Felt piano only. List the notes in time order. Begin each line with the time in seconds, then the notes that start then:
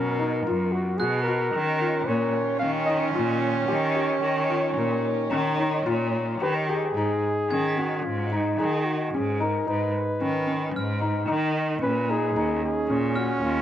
Already playing: C#4
0.19 D#4
0.47 F4
1.00 F#4
1.27 F#4
1.81 F4
2.08 A#3
2.62 C#4
2.89 D#4
3.15 F4
3.68 G4
3.95 G4
4.50 F4
4.77 A#3
5.32 C#4
5.59 D#4
5.86 F4
6.42 G4
6.69 G4
6.96 D#4
7.51 C#4
7.78 C#4
8.32 D#4
8.58 D#4
9.14 C#4
9.40 D#4
9.67 D#4
10.21 C#4
10.47 C#4
11.01 D#4
11.28 D#4
11.82 C#4
12.10 D#4
12.36 D#4
12.90 C#4
13.16 C#4